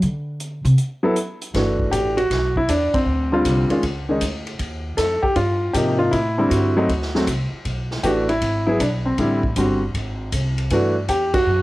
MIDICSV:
0, 0, Header, 1, 5, 480
1, 0, Start_track
1, 0, Key_signature, 1, "major"
1, 0, Tempo, 381437
1, 26, Time_signature, 4, 2, 24, 8
1, 14626, End_track
2, 0, Start_track
2, 0, Title_t, "Grand piano"
2, 0, Program_c, 0, 0
2, 1296, Note_on_c, 0, 54, 70
2, 1305, Note_on_c, 0, 59, 61
2, 1307, Note_on_c, 0, 64, 64
2, 1320, Note_on_c, 0, 69, 74
2, 1444, Note_off_c, 0, 54, 0
2, 1449, Note_off_c, 0, 59, 0
2, 1450, Note_off_c, 0, 64, 0
2, 1456, Note_off_c, 0, 69, 0
2, 1945, Note_on_c, 0, 57, 51
2, 1946, Note_on_c, 0, 52, 55
2, 1958, Note_on_c, 0, 62, 47
2, 1963, Note_on_c, 0, 66, 58
2, 2409, Note_on_c, 0, 67, 89
2, 2679, Note_off_c, 0, 52, 0
2, 2679, Note_off_c, 0, 57, 0
2, 2685, Note_off_c, 0, 62, 0
2, 2688, Note_off_c, 0, 66, 0
2, 2733, Note_on_c, 0, 66, 88
2, 2745, Note_off_c, 0, 67, 0
2, 3183, Note_off_c, 0, 66, 0
2, 3235, Note_on_c, 0, 64, 85
2, 3390, Note_on_c, 0, 62, 85
2, 3394, Note_off_c, 0, 64, 0
2, 3700, Note_on_c, 0, 60, 69
2, 3715, Note_off_c, 0, 62, 0
2, 4147, Note_off_c, 0, 60, 0
2, 4177, Note_on_c, 0, 50, 73
2, 4181, Note_on_c, 0, 55, 63
2, 4188, Note_on_c, 0, 60, 63
2, 4196, Note_on_c, 0, 65, 86
2, 4628, Note_off_c, 0, 50, 0
2, 4630, Note_off_c, 0, 55, 0
2, 4633, Note_off_c, 0, 60, 0
2, 4637, Note_off_c, 0, 65, 0
2, 4654, Note_on_c, 0, 51, 54
2, 4658, Note_on_c, 0, 56, 53
2, 4668, Note_on_c, 0, 61, 58
2, 4672, Note_on_c, 0, 65, 65
2, 4803, Note_off_c, 0, 51, 0
2, 4805, Note_off_c, 0, 56, 0
2, 4810, Note_off_c, 0, 61, 0
2, 4812, Note_off_c, 0, 65, 0
2, 5144, Note_on_c, 0, 51, 59
2, 5150, Note_on_c, 0, 56, 52
2, 5162, Note_on_c, 0, 61, 50
2, 5168, Note_on_c, 0, 63, 67
2, 5288, Note_off_c, 0, 51, 0
2, 5291, Note_off_c, 0, 56, 0
2, 5297, Note_off_c, 0, 61, 0
2, 5300, Note_off_c, 0, 63, 0
2, 6255, Note_on_c, 0, 69, 90
2, 6575, Note_on_c, 0, 67, 86
2, 6588, Note_off_c, 0, 69, 0
2, 6728, Note_off_c, 0, 67, 0
2, 6746, Note_on_c, 0, 65, 87
2, 7216, Note_on_c, 0, 67, 85
2, 7231, Note_on_c, 0, 48, 58
2, 7239, Note_on_c, 0, 53, 53
2, 7240, Note_off_c, 0, 65, 0
2, 7249, Note_on_c, 0, 58, 56
2, 7255, Note_on_c, 0, 63, 64
2, 7517, Note_off_c, 0, 67, 0
2, 7534, Note_on_c, 0, 65, 82
2, 7692, Note_on_c, 0, 64, 82
2, 7704, Note_off_c, 0, 65, 0
2, 7708, Note_off_c, 0, 48, 0
2, 7711, Note_off_c, 0, 53, 0
2, 7717, Note_off_c, 0, 58, 0
2, 7720, Note_off_c, 0, 63, 0
2, 8024, Note_on_c, 0, 50, 64
2, 8025, Note_off_c, 0, 64, 0
2, 8030, Note_on_c, 0, 55, 64
2, 8036, Note_on_c, 0, 60, 63
2, 8044, Note_on_c, 0, 64, 78
2, 8166, Note_on_c, 0, 66, 70
2, 8472, Note_off_c, 0, 50, 0
2, 8475, Note_off_c, 0, 55, 0
2, 8478, Note_off_c, 0, 60, 0
2, 8482, Note_off_c, 0, 64, 0
2, 8515, Note_on_c, 0, 54, 78
2, 8517, Note_on_c, 0, 57, 70
2, 8528, Note_on_c, 0, 60, 72
2, 8533, Note_on_c, 0, 63, 91
2, 8654, Note_off_c, 0, 54, 0
2, 8656, Note_off_c, 0, 57, 0
2, 8661, Note_off_c, 0, 60, 0
2, 8663, Note_off_c, 0, 63, 0
2, 8993, Note_off_c, 0, 66, 0
2, 8995, Note_on_c, 0, 54, 62
2, 8996, Note_on_c, 0, 57, 58
2, 9008, Note_on_c, 0, 60, 57
2, 9012, Note_on_c, 0, 66, 64
2, 9134, Note_off_c, 0, 54, 0
2, 9135, Note_off_c, 0, 57, 0
2, 9141, Note_off_c, 0, 60, 0
2, 9143, Note_off_c, 0, 66, 0
2, 10111, Note_on_c, 0, 67, 84
2, 10117, Note_on_c, 0, 52, 70
2, 10121, Note_on_c, 0, 57, 64
2, 10122, Note_on_c, 0, 62, 65
2, 10134, Note_on_c, 0, 66, 79
2, 10182, Note_off_c, 0, 67, 0
2, 10399, Note_off_c, 0, 52, 0
2, 10401, Note_off_c, 0, 57, 0
2, 10401, Note_off_c, 0, 62, 0
2, 10407, Note_off_c, 0, 66, 0
2, 10431, Note_on_c, 0, 64, 89
2, 10875, Note_off_c, 0, 64, 0
2, 10905, Note_on_c, 0, 64, 83
2, 10911, Note_on_c, 0, 54, 55
2, 10922, Note_on_c, 0, 59, 59
2, 10931, Note_on_c, 0, 68, 66
2, 11053, Note_off_c, 0, 54, 0
2, 11055, Note_off_c, 0, 64, 0
2, 11059, Note_off_c, 0, 59, 0
2, 11063, Note_off_c, 0, 68, 0
2, 11076, Note_on_c, 0, 62, 82
2, 11147, Note_off_c, 0, 62, 0
2, 11396, Note_on_c, 0, 60, 71
2, 11547, Note_off_c, 0, 60, 0
2, 11551, Note_on_c, 0, 50, 62
2, 11565, Note_on_c, 0, 55, 58
2, 11566, Note_on_c, 0, 60, 57
2, 11573, Note_on_c, 0, 64, 66
2, 11836, Note_off_c, 0, 50, 0
2, 11843, Note_off_c, 0, 55, 0
2, 11844, Note_off_c, 0, 60, 0
2, 11848, Note_off_c, 0, 64, 0
2, 12046, Note_on_c, 0, 50, 58
2, 12054, Note_on_c, 0, 55, 51
2, 12056, Note_on_c, 0, 60, 55
2, 12065, Note_on_c, 0, 66, 61
2, 12324, Note_off_c, 0, 50, 0
2, 12328, Note_off_c, 0, 55, 0
2, 12329, Note_off_c, 0, 60, 0
2, 12334, Note_off_c, 0, 66, 0
2, 13481, Note_on_c, 0, 52, 69
2, 13487, Note_on_c, 0, 57, 55
2, 13504, Note_on_c, 0, 62, 62
2, 13509, Note_on_c, 0, 66, 70
2, 13762, Note_off_c, 0, 52, 0
2, 13765, Note_off_c, 0, 57, 0
2, 13774, Note_off_c, 0, 62, 0
2, 13776, Note_off_c, 0, 66, 0
2, 13956, Note_on_c, 0, 67, 89
2, 14270, Note_on_c, 0, 66, 104
2, 14281, Note_off_c, 0, 67, 0
2, 14626, Note_off_c, 0, 66, 0
2, 14626, End_track
3, 0, Start_track
3, 0, Title_t, "Upright bass"
3, 0, Program_c, 1, 32
3, 34, Note_on_c, 1, 50, 85
3, 778, Note_off_c, 1, 50, 0
3, 813, Note_on_c, 1, 48, 89
3, 913, Note_off_c, 1, 48, 0
3, 1936, Note_on_c, 1, 31, 76
3, 2405, Note_off_c, 1, 31, 0
3, 2421, Note_on_c, 1, 33, 78
3, 2887, Note_off_c, 1, 33, 0
3, 2899, Note_on_c, 1, 35, 72
3, 3366, Note_off_c, 1, 35, 0
3, 3379, Note_on_c, 1, 40, 77
3, 3677, Note_off_c, 1, 40, 0
3, 3847, Note_on_c, 1, 38, 80
3, 4320, Note_off_c, 1, 38, 0
3, 4341, Note_on_c, 1, 36, 89
3, 4638, Note_off_c, 1, 36, 0
3, 4819, Note_on_c, 1, 37, 67
3, 5286, Note_off_c, 1, 37, 0
3, 5297, Note_on_c, 1, 38, 75
3, 5766, Note_off_c, 1, 38, 0
3, 5776, Note_on_c, 1, 39, 81
3, 6245, Note_off_c, 1, 39, 0
3, 6260, Note_on_c, 1, 41, 82
3, 6558, Note_off_c, 1, 41, 0
3, 6740, Note_on_c, 1, 43, 72
3, 7208, Note_off_c, 1, 43, 0
3, 7222, Note_on_c, 1, 44, 75
3, 7689, Note_off_c, 1, 44, 0
3, 7709, Note_on_c, 1, 45, 75
3, 8172, Note_off_c, 1, 45, 0
3, 8187, Note_on_c, 1, 43, 86
3, 8651, Note_off_c, 1, 43, 0
3, 8667, Note_on_c, 1, 38, 69
3, 9132, Note_off_c, 1, 38, 0
3, 9150, Note_on_c, 1, 36, 72
3, 9445, Note_off_c, 1, 36, 0
3, 9627, Note_on_c, 1, 35, 74
3, 10092, Note_off_c, 1, 35, 0
3, 10107, Note_on_c, 1, 33, 77
3, 10572, Note_off_c, 1, 33, 0
3, 10587, Note_on_c, 1, 32, 76
3, 11053, Note_off_c, 1, 32, 0
3, 11067, Note_on_c, 1, 35, 76
3, 11533, Note_off_c, 1, 35, 0
3, 11548, Note_on_c, 1, 33, 80
3, 12014, Note_off_c, 1, 33, 0
3, 12030, Note_on_c, 1, 31, 86
3, 12495, Note_off_c, 1, 31, 0
3, 12512, Note_on_c, 1, 32, 75
3, 12975, Note_off_c, 1, 32, 0
3, 12987, Note_on_c, 1, 36, 82
3, 13453, Note_off_c, 1, 36, 0
3, 13471, Note_on_c, 1, 43, 82
3, 13935, Note_off_c, 1, 43, 0
3, 13947, Note_on_c, 1, 40, 89
3, 14413, Note_off_c, 1, 40, 0
3, 14422, Note_on_c, 1, 42, 79
3, 14626, Note_off_c, 1, 42, 0
3, 14626, End_track
4, 0, Start_track
4, 0, Title_t, "Muted upright bass strokes"
4, 3698, Note_on_c, 9, 29, 37
4, 3824, Note_off_c, 9, 29, 0
4, 4653, Note_on_c, 9, 29, 38
4, 4779, Note_off_c, 9, 29, 0
4, 6579, Note_on_c, 9, 29, 38
4, 6705, Note_off_c, 9, 29, 0
4, 9460, Note_on_c, 9, 29, 36
4, 9586, Note_off_c, 9, 29, 0
4, 14626, End_track
5, 0, Start_track
5, 0, Title_t, "Drums"
5, 25, Note_on_c, 9, 42, 41
5, 151, Note_off_c, 9, 42, 0
5, 503, Note_on_c, 9, 42, 48
5, 629, Note_off_c, 9, 42, 0
5, 821, Note_on_c, 9, 42, 43
5, 947, Note_off_c, 9, 42, 0
5, 979, Note_on_c, 9, 42, 40
5, 1105, Note_off_c, 9, 42, 0
5, 1459, Note_on_c, 9, 42, 54
5, 1585, Note_off_c, 9, 42, 0
5, 1781, Note_on_c, 9, 42, 44
5, 1906, Note_off_c, 9, 42, 0
5, 1940, Note_on_c, 9, 36, 22
5, 1942, Note_on_c, 9, 51, 56
5, 1943, Note_on_c, 9, 38, 33
5, 2065, Note_off_c, 9, 36, 0
5, 2068, Note_off_c, 9, 51, 0
5, 2069, Note_off_c, 9, 38, 0
5, 2258, Note_on_c, 9, 36, 46
5, 2384, Note_off_c, 9, 36, 0
5, 2420, Note_on_c, 9, 36, 18
5, 2421, Note_on_c, 9, 44, 53
5, 2421, Note_on_c, 9, 51, 61
5, 2546, Note_off_c, 9, 36, 0
5, 2547, Note_off_c, 9, 44, 0
5, 2547, Note_off_c, 9, 51, 0
5, 2738, Note_on_c, 9, 51, 41
5, 2864, Note_off_c, 9, 51, 0
5, 2900, Note_on_c, 9, 36, 19
5, 2904, Note_on_c, 9, 51, 51
5, 2905, Note_on_c, 9, 38, 31
5, 3026, Note_off_c, 9, 36, 0
5, 3029, Note_off_c, 9, 51, 0
5, 3031, Note_off_c, 9, 38, 0
5, 3220, Note_on_c, 9, 36, 46
5, 3346, Note_off_c, 9, 36, 0
5, 3379, Note_on_c, 9, 44, 58
5, 3379, Note_on_c, 9, 51, 74
5, 3380, Note_on_c, 9, 36, 26
5, 3505, Note_off_c, 9, 44, 0
5, 3505, Note_off_c, 9, 51, 0
5, 3506, Note_off_c, 9, 36, 0
5, 3700, Note_on_c, 9, 36, 69
5, 3700, Note_on_c, 9, 51, 58
5, 3826, Note_off_c, 9, 36, 0
5, 3826, Note_off_c, 9, 51, 0
5, 4340, Note_on_c, 9, 36, 20
5, 4341, Note_on_c, 9, 44, 63
5, 4341, Note_on_c, 9, 51, 62
5, 4466, Note_off_c, 9, 36, 0
5, 4466, Note_off_c, 9, 44, 0
5, 4466, Note_off_c, 9, 51, 0
5, 4656, Note_on_c, 9, 51, 41
5, 4782, Note_off_c, 9, 51, 0
5, 4818, Note_on_c, 9, 51, 52
5, 4819, Note_on_c, 9, 36, 21
5, 4944, Note_off_c, 9, 51, 0
5, 4945, Note_off_c, 9, 36, 0
5, 5295, Note_on_c, 9, 44, 64
5, 5295, Note_on_c, 9, 51, 70
5, 5299, Note_on_c, 9, 36, 24
5, 5421, Note_off_c, 9, 44, 0
5, 5421, Note_off_c, 9, 51, 0
5, 5425, Note_off_c, 9, 36, 0
5, 5620, Note_on_c, 9, 51, 39
5, 5746, Note_off_c, 9, 51, 0
5, 5777, Note_on_c, 9, 51, 56
5, 5780, Note_on_c, 9, 36, 23
5, 5903, Note_off_c, 9, 51, 0
5, 5906, Note_off_c, 9, 36, 0
5, 6261, Note_on_c, 9, 44, 64
5, 6261, Note_on_c, 9, 51, 65
5, 6262, Note_on_c, 9, 36, 17
5, 6262, Note_on_c, 9, 38, 34
5, 6387, Note_off_c, 9, 44, 0
5, 6387, Note_off_c, 9, 51, 0
5, 6388, Note_off_c, 9, 36, 0
5, 6388, Note_off_c, 9, 38, 0
5, 6583, Note_on_c, 9, 36, 49
5, 6708, Note_off_c, 9, 36, 0
5, 6739, Note_on_c, 9, 51, 55
5, 6743, Note_on_c, 9, 36, 24
5, 6865, Note_off_c, 9, 51, 0
5, 6869, Note_off_c, 9, 36, 0
5, 7225, Note_on_c, 9, 36, 24
5, 7226, Note_on_c, 9, 44, 65
5, 7226, Note_on_c, 9, 51, 68
5, 7351, Note_off_c, 9, 36, 0
5, 7352, Note_off_c, 9, 44, 0
5, 7352, Note_off_c, 9, 51, 0
5, 7707, Note_on_c, 9, 36, 21
5, 7709, Note_on_c, 9, 51, 56
5, 7833, Note_off_c, 9, 36, 0
5, 7835, Note_off_c, 9, 51, 0
5, 8189, Note_on_c, 9, 36, 22
5, 8192, Note_on_c, 9, 44, 62
5, 8192, Note_on_c, 9, 51, 59
5, 8315, Note_off_c, 9, 36, 0
5, 8318, Note_off_c, 9, 44, 0
5, 8318, Note_off_c, 9, 51, 0
5, 8670, Note_on_c, 9, 36, 21
5, 8674, Note_on_c, 9, 51, 48
5, 8796, Note_off_c, 9, 36, 0
5, 8799, Note_off_c, 9, 51, 0
5, 8834, Note_on_c, 9, 38, 25
5, 8960, Note_off_c, 9, 38, 0
5, 8996, Note_on_c, 9, 38, 37
5, 9122, Note_off_c, 9, 38, 0
5, 9150, Note_on_c, 9, 36, 22
5, 9150, Note_on_c, 9, 44, 55
5, 9150, Note_on_c, 9, 51, 66
5, 9276, Note_off_c, 9, 36, 0
5, 9276, Note_off_c, 9, 44, 0
5, 9276, Note_off_c, 9, 51, 0
5, 9628, Note_on_c, 9, 36, 22
5, 9628, Note_on_c, 9, 51, 51
5, 9754, Note_off_c, 9, 36, 0
5, 9754, Note_off_c, 9, 51, 0
5, 9955, Note_on_c, 9, 38, 31
5, 10080, Note_off_c, 9, 38, 0
5, 10109, Note_on_c, 9, 44, 47
5, 10109, Note_on_c, 9, 51, 59
5, 10110, Note_on_c, 9, 36, 24
5, 10235, Note_off_c, 9, 44, 0
5, 10235, Note_off_c, 9, 51, 0
5, 10236, Note_off_c, 9, 36, 0
5, 10431, Note_on_c, 9, 51, 42
5, 10556, Note_off_c, 9, 51, 0
5, 10589, Note_on_c, 9, 51, 55
5, 10590, Note_on_c, 9, 36, 17
5, 10715, Note_off_c, 9, 36, 0
5, 10715, Note_off_c, 9, 51, 0
5, 11071, Note_on_c, 9, 36, 22
5, 11073, Note_on_c, 9, 44, 54
5, 11073, Note_on_c, 9, 51, 70
5, 11197, Note_off_c, 9, 36, 0
5, 11198, Note_off_c, 9, 44, 0
5, 11198, Note_off_c, 9, 51, 0
5, 11550, Note_on_c, 9, 51, 55
5, 11552, Note_on_c, 9, 36, 19
5, 11676, Note_off_c, 9, 51, 0
5, 11678, Note_off_c, 9, 36, 0
5, 11871, Note_on_c, 9, 36, 54
5, 11997, Note_off_c, 9, 36, 0
5, 12028, Note_on_c, 9, 44, 53
5, 12028, Note_on_c, 9, 51, 63
5, 12032, Note_on_c, 9, 36, 21
5, 12154, Note_off_c, 9, 44, 0
5, 12154, Note_off_c, 9, 51, 0
5, 12158, Note_off_c, 9, 36, 0
5, 12513, Note_on_c, 9, 36, 18
5, 12516, Note_on_c, 9, 51, 50
5, 12639, Note_off_c, 9, 36, 0
5, 12641, Note_off_c, 9, 51, 0
5, 12989, Note_on_c, 9, 44, 58
5, 12989, Note_on_c, 9, 51, 72
5, 12992, Note_on_c, 9, 36, 24
5, 13115, Note_off_c, 9, 44, 0
5, 13115, Note_off_c, 9, 51, 0
5, 13118, Note_off_c, 9, 36, 0
5, 13311, Note_on_c, 9, 51, 43
5, 13437, Note_off_c, 9, 51, 0
5, 13468, Note_on_c, 9, 51, 61
5, 13471, Note_on_c, 9, 36, 18
5, 13594, Note_off_c, 9, 51, 0
5, 13597, Note_off_c, 9, 36, 0
5, 13949, Note_on_c, 9, 44, 49
5, 13949, Note_on_c, 9, 51, 61
5, 13950, Note_on_c, 9, 36, 22
5, 14075, Note_off_c, 9, 44, 0
5, 14075, Note_off_c, 9, 51, 0
5, 14076, Note_off_c, 9, 36, 0
5, 14268, Note_on_c, 9, 36, 74
5, 14268, Note_on_c, 9, 51, 72
5, 14393, Note_off_c, 9, 51, 0
5, 14394, Note_off_c, 9, 36, 0
5, 14626, End_track
0, 0, End_of_file